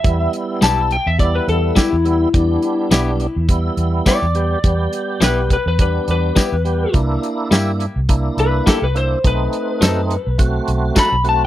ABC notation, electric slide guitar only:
X:1
M:4/4
L:1/16
Q:"Swing 16ths" 1/4=104
K:Em
V:1 name="Electric slide guitar"
e2 z2 a2 g e d B A2 E4- | E8 z4 d4- | d4 B2 B B B2 B6 | z8 z2 B2 A B c2 |
B8 z4 b2 a z |]